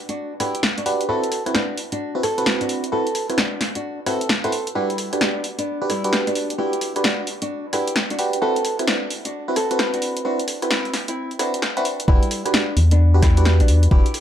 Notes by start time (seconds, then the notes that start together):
0.09 D4 F#4, closed hi-hat
0.40 D4 E4 F#4 G4 B4, cross-stick, open hi-hat
0.55 closed hi-hat
0.63 snare
0.78 D4 F#4, closed hi-hat
0.86 D4 F#4 G4 B4, open hi-hat
1.01 closed hi-hat
1.09 C4 E4 F#4 A4 B4
1.24 closed hi-hat
1.32 cross-stick, open hi-hat
1.46 C4 E4 F#4 B4, cross-stick, closed hi-hat
1.55 D4 F#4, snare
1.77 open hi-hat
1.92 D4 F#4, closed hi-hat
2.15 C4 E4 F#4 B4
2.23 F#4 A4, cross-stick, open hi-hat
2.38 C4 E4 F#4 B4, closed hi-hat
2.46 snare
2.61 D4 F#4, closed hi-hat
2.69 open hi-hat
2.84 closed hi-hat
2.92 C4 E4 F#4 A4 B4
3.07 closed hi-hat
3.15 cross-stick, open hi-hat
3.30 C4 E4 F#4 B4, cross-stick, closed hi-hat
3.38 D4 F#4, snare
3.61 snare, open hi-hat
3.75 D4 F#4, closed hi-hat
4.06 C4 E4 F#4 A4 B4, cross-stick, open hi-hat
4.21 closed hi-hat
4.29 snare
4.44 C4 E4 F#4 A4 B4 C5, closed hi-hat
4.52 open hi-hat
4.67 closed hi-hat
4.75 G3 D4 E4 F#4 G4 B4
4.90 closed hi-hat
4.98 cross-stick, open hi-hat
5.13 D4 F#4 G4 B4, cross-stick, closed hi-hat
5.21 B3 D4, snare
5.44 open hi-hat
5.58 B3 D4, closed hi-hat
5.81 D4 F#4 G4 B4
5.89 G3 E4, cross-stick, open hi-hat
6.04 D4 F#4 G4 B4, closed hi-hat
6.13 snare
6.27 B3 D4, closed hi-hat
6.35 open hi-hat
6.50 closed hi-hat
6.58 D4 E4 F#4 G4 B4
6.73 closed hi-hat
6.81 cross-stick, open hi-hat
6.96 D4 F#4 G4 B4, cross-stick, closed hi-hat
7.04 D4 F#4, snare
7.27 open hi-hat
7.42 D4 F#4, closed hi-hat
7.73 D4 E4 F#4 G4 B4, cross-stick, open hi-hat
7.87 closed hi-hat
7.96 snare
8.10 D4 F#4, closed hi-hat
8.19 D4 F#4 G4 B4, open hi-hat
8.33 closed hi-hat
8.42 C4 E4 F#4 A4 B4
8.56 closed hi-hat
8.65 cross-stick, open hi-hat
8.79 C4 E4 F#4 B4, cross-stick, closed hi-hat
8.87 D4 F#4, snare
9.10 open hi-hat
9.25 D4 F#4, closed hi-hat
9.48 C4 E4 F#4 B4
9.56 F#4 A4, cross-stick, open hi-hat
9.71 C4 E4 F#4 B4, closed hi-hat
9.79 snare
9.94 D4 F#4, closed hi-hat
10.02 open hi-hat
10.17 closed hi-hat
10.25 C4 D4 E4 F#4 B4
10.39 closed hi-hat
10.48 cross-stick, open hi-hat
10.62 C4 E4 F#4 B4, cross-stick, closed hi-hat
10.71 C4 E4, snare
10.85 closed hi-hat
10.94 snare, open hi-hat
11.08 C4 E4, closed hi-hat
11.31 closed hi-hat
11.39 C4 D4 E4 F#4 B4, cross-stick, open hi-hat
11.54 closed hi-hat
11.62 snare
11.77 C4 D4 E4 F#4 B4, closed hi-hat
11.85 open hi-hat
12.00 closed hi-hat
12.08 E1 G3 D4 E4 F#4 G4 B4, kick
12.23 closed hi-hat
12.31 cross-stick, open hi-hat
12.46 D4 F#4 G4 B4, cross-stick, closed hi-hat
12.54 B3 D4, snare
12.77 E2, open hi-hat
12.91 B3 D4, closed hi-hat
13.14 D4 F#4 G4 B4
13.22 G3 E4, kick, cross-stick, snare, open hi-hat
13.37 D4 F#4 G4 B4, closed hi-hat
13.45 snare
13.60 A1 B3 D4, closed hi-hat
13.68 E2, open hi-hat
13.83 closed hi-hat
13.91 E1 D4 E4 F#4 G4 B4, kick
14.06 closed hi-hat
14.14 cross-stick, open hi-hat